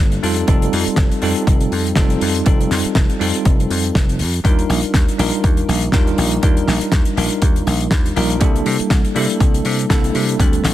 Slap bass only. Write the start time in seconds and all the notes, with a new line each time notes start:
0.00 G1
0.23 F2
0.48 F1
0.73 F2
0.87 muted slap bass stroke
0.97 F1
1.22 F2
1.47 F1
1.72 F2
1.97 F1
2.22 F2
2.46 F1
2.71 F2
2.85 muted slap bass stroke
2.96 F1
3.20 F2
3.46 F1
3.70 F2
3.95 F1
4.20 F2
4.45 D#2
4.69 A#1
4.94 D#2
5.19 A#1
5.44 D#2
5.68 A#1
5.93 D#2
6.18 A#1
6.43 D#2
6.68 A#1
6.92 D#2
7.17 A#1
7.42 D#2
7.67 A#1
7.92 D#2
8.16 A#1
8.41 C2
8.66 C3
8.80 muted slap bass stroke
8.91 C2
9.16 C3
9.40 C2
9.65 C3
9.90 C2
10.15 C3
10.40 D2
10.64 A1